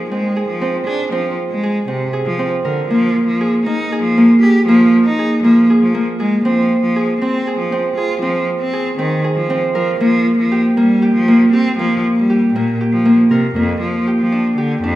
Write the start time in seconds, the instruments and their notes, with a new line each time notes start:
Already playing: harp A#3 C4 D#4 F4 G#4 A#4
0.11 cello G#3, harp C4
0.36 harp G#4
0.48 cello F3
0.61 harp C4
0.87 cello D4, harp G#4
1.12 cello F3, harp C4
1.50 cello G#3
1.63 harp G#4
1.88 cello C3, harp C4
2.13 harp G#4
2.26 cello F3
2.39 harp C4
2.64 cello D3, harp A#4
2.88 cello F3, harp A#3
3.27 cello F3
3.41 harp G#4
3.65 harp A#3, cello D#4
3.92 harp G#4
4.03 cello F3
4.17 harp A#3
4.41 cello G4, harp G#4
4.67 cello F3, harp A#3
5.05 cello D#4
5.19 harp G#4
5.43 cello F3, harp A#3
5.70 harp G#4
5.81 cello F3
5.94 harp A#3
6.20 cello G#3, harp G#4
6.45 cello F3, harp C4
6.83 cello F3
6.96 harp G#4
7.20 cello C4, harp C4
7.47 harp G#4
7.58 cello F3
7.72 harp C4
7.96 cello F4, harp G#4
8.21 cello F3, harp C4
8.60 cello C4
8.73 harp G#4
8.98 cello D#3, harp C4
9.24 harp G#4
9.36 cello F3
9.50 harp C4
9.74 cello F3, harp A#4
10.00 cello F3, harp A#3
10.38 cello F3
10.52 harp G4
10.77 cello G3, harp A#3
11.02 harp G4
11.14 cello F3
11.28 harp A#3
11.52 cello C4, harp G4
11.77 cello F3, harp A#3
12.16 cello G3
12.30 harp G4
12.54 cello A#2, harp A#3
12.81 harp G4
12.92 cello F3
13.05 harp A#3
13.30 cello C3, harp A#4
13.55 cello F2, harp A#3
13.81 cello F3
14.07 harp G4
14.19 cello F3
14.32 harp D4
14.57 cello D3, harp G4
14.82 cello F2, harp D4